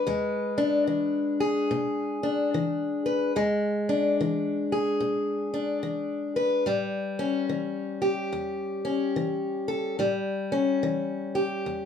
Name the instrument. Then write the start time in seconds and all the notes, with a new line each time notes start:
steel-string acoustic guitar
Already playing: B4
0.07 E2 G#3
0.58 D4
0.87 E3
1.40 G#4
1.71 B2
2.23 D4
2.54 E3
3.06 B4
3.36 E2 G#3
3.89 D4
4.21 E3
4.72 G#4
5.00 B2
5.54 D4
5.83 E3
6.36 B4
6.66 A2 G3
7.19 C#4
7.49 E3
8.02 G4
8.33 E2
8.85 C#4
9.16 E3
9.68 A4
9.99 A2 G3
10.52 C#4
10.83 E3
11.35 G4
11.66 E2